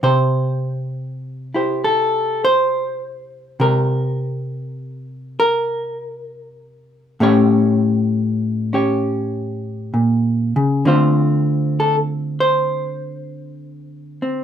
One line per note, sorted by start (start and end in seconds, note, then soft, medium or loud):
0.00 3.57 C3 medium
0.00 1.46 G4 soft
0.00 1.55 C5 medium
1.54 3.64 E4 soft
1.54 5.05 G4 soft
1.54 1.84 C5 soft
1.84 2.44 A4 medium
2.45 3.61 C5 medium
3.60 7.17 C3 medium
3.60 5.38 A#4 medium
5.40 7.21 A#4 loud
7.20 9.93 A2 medium
7.20 10.83 A3 medium
7.20 8.72 C#4 medium
7.20 8.73 G4 medium
7.20 8.74 C#5 medium
8.73 10.82 C#4 soft
8.73 10.83 G4 soft
8.73 10.83 C#5 soft
9.94 10.56 A#2 medium
10.56 10.85 C#3 medium
10.85 14.44 D3 medium
10.85 14.44 A3 soft
10.85 14.21 C4 soft
10.85 14.44 F4 soft
10.85 11.78 C5 soft
11.80 11.96 A4 medium
12.40 14.44 C5 medium
14.22 14.44 C4 soft